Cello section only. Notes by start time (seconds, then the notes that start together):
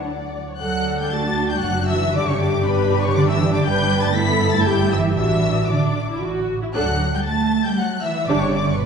Already playing: F#3
0.61 F#3
1.00 G3
1.13 A3
1.51 G3
1.64 F#3
1.90 E3
2.15 D3
2.28 C#3
2.41 D3
2.66 B2
3.04 C#3
3.16 D3
3.30 E3
3.54 D3
3.66 G3
4.04 A3
4.16 B3
4.54 A3
4.67 G3
4.93 E3
5.19 E3
5.70 D3
6.76 F#3
7.14 G3
7.26 A3
7.64 G3
7.78 F#3
8.03 E3
8.28 D3
8.41 C#3
8.54 D3
8.78 B2